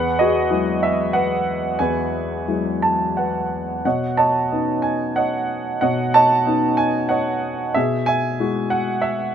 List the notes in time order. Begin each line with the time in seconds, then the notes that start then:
Already playing: E2 B4 F#5
0.19 F#4 G#4 D#5
0.51 F#3 G#3 E4
0.83 E5
1.13 B4 F#5
1.79 E2 B4 G#5
2.48 F#3 G#3 E4
2.82 A5
3.17 B4 F#5
3.85 B2 C#5 D#5 F#5
4.17 C#5 D#5 A5
4.52 B3 C#4 D#4
4.82 G#5
5.16 C#5 D#5 F#5
5.81 B2 C#5 D#5 F#5
6.14 C#5 D#5 A5
6.46 B3 C#4 D#4
6.77 G#5
7.09 C#5 D#5 F#5
7.74 B2 G#4 E5
8.06 E5 G#5
8.40 G#3 E4 F#4
8.70 F#5
9.02 E5